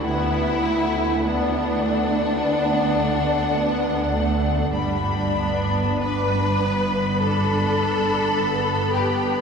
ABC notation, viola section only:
X:1
M:4/4
L:1/8
Q:1/4=52
K:D
V:1 name="Viola section"
B, A, B, A, B, A, B, A, | G, B, D B, D2 B,2 |]